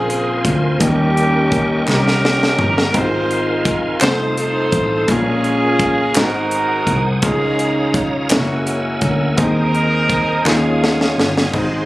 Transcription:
Already playing: fingered electric bass A#1, grand piano C#3 G#3 A#3 C4 F4 A#4, horn section C4 F4 G#4, tonewheel organ A#4 C5 G#5 C6
0.10 closed hi-hat
0.45 fingered electric bass D2, kick, closed hi-hat
0.80 fingered electric bass D#2, grand piano D#3 G3 A#3 C#4 D#4 A#4, horn section A#3 C#4 G4, tonewheel organ D#5 G5 C#6, kick, closed hi-hat
1.17 closed hi-hat
1.52 kick, closed hi-hat
1.88 fingered electric bass C2, horn section C#4 G4 A#4, snare, clap
2.08 snare
2.25 snare
2.43 snare
2.58 fingered electric bass G1, floor tom
2.78 snare
2.93 fingered electric bass G#1, grand piano G#2 G#3 C4 D#4 F4 A#4, horn section D#4 F4 C5, tonewheel organ F5 G#5 C6, kick, closed hi-hat
3.31 closed hi-hat
3.65 kick, closed hi-hat
4.00 fingered electric bass F1, grand piano G3 C4 D#4 F4 C5, horn section D#4 A4 C5, tonewheel organ C5 A5 D#6, snare, clap, closed hi-hat
4.07 grand piano A3
4.37 horn section D#4 A4 C5, closed hi-hat
4.72 fingered electric bass A1, kick, closed hi-hat
5.07 fingered electric bass A#1, grand piano A#2 G#3 A#3 C#4 F4 A#4, horn section C#4 F4 G#4, tonewheel organ A#4 F5 G#5 C#6, kick, closed hi-hat
5.44 closed hi-hat
5.79 kick, closed hi-hat
6.14 fingered electric bass G#1, grand piano G#2 G#3 C4 D#4 F#4 C5, horn section D#4 F#4 A#4, tonewheel organ C5 F#5 D#6, snare, clap, closed hi-hat
6.51 closed hi-hat
6.87 fingered electric bass C2, kick, closed hi-hat
7.22 fingered electric bass C#2, grand piano C#3 G#3 C#4 D#4 F4 A#4, horn section D#4 F4 G#4, tonewheel organ C#5 F5 A#5, kick, closed hi-hat
7.59 closed hi-hat
7.94 kick, closed hi-hat
8.29 fingered electric bass F#1, grand piano G#3 C#4 E4 F#4 A#4, horn section A#3 C#4 F#4, tonewheel organ A#4 F#5 G#5 E6, snare, clap, closed hi-hat
8.67 closed hi-hat
9.01 fingered electric bass D2, kick, closed hi-hat
9.37 fingered electric bass D#2, grand piano D#3 C4 D#4 G#4, horn section D#4 A#4, tonewheel organ C5 D#5 D#6, kick, closed hi-hat
9.75 closed hi-hat
10.10 kick, closed hi-hat
10.45 fingered electric bass D#2, grand piano D#3 G#3 C#4 D#4 F4 A#4, horn section C#4 F4 G#4, tonewheel organ C#5 F5 D#6, snare, clap
10.84 snare
11.01 snare
11.18 fingered electric bass G1, snare
11.37 snare
11.52 fingered electric bass G#1, grand piano G#2 G#3 C4 D#4 C5, tonewheel organ G#4 C5 D#5 C6, kick, crash

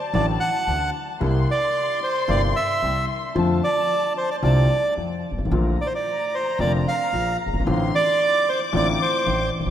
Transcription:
Already playing: violin section A5
0.14 upright bass A1, grand piano A1 A2 D3 F#3 A3 F#4, bandoneon D5
0.40 bandoneon F#5
0.67 upright bass D2, grand piano D2 D3
1.21 upright bass C2, grand piano C2 C3 G3 A#3 E4, violin section C6
1.51 bandoneon D5
2.03 bandoneon C5
2.28 grand piano G1 G2 C3 G3 A#3 E4, upright bass G1, bandoneon D5
2.56 bandoneon E5
2.82 grand piano C2 C3, upright bass C2
3.35 grand piano F2 D3 F3 A3 C4 F4, upright bass F2, violin section A5
3.64 bandoneon D5
4.18 bandoneon C5
4.31 bandoneon D5
4.42 upright bass C2, grand piano C2 C3 D3 A3 C4 F4, bandoneon D5
4.97 upright bass F2, grand piano F2 F3
5.31 upright bass G1, grand piano G1
5.38 upright bass G#1, grand piano G#1
5.45 upright bass A1, grand piano A1
5.51 upright bass A#1, grand piano A#1 A#2 D3 A3 A#3 F4, violin section A#5
5.81 bandoneon D5
5.87 bandoneon C5
5.95 bandoneon D5
6.35 bandoneon C5
6.59 upright bass F1, grand piano F1 F2 D3 A3 A#3 F4, bandoneon D5
6.88 bandoneon F5
7.13 upright bass A#1, grand piano A#1 A#2
7.46 upright bass F#1, grand piano F#1
7.53 upright bass G1, grand piano G1
7.60 upright bass G#1, grand piano G#1
7.66 upright bass A1, grand piano A1 A2 D3 A3 C4 F4, violin section C6
7.95 bandoneon D5
8.21 violin section D6
8.49 bandoneon C5
8.73 grand piano A1 A2 D3 A3 C4 F4, upright bass A1, bandoneon D5
9.02 bandoneon C5
9.26 grand piano A1 A2, upright bass A1
9.60 upright bass A1, grand piano A1
9.66 upright bass A#1, grand piano A#1

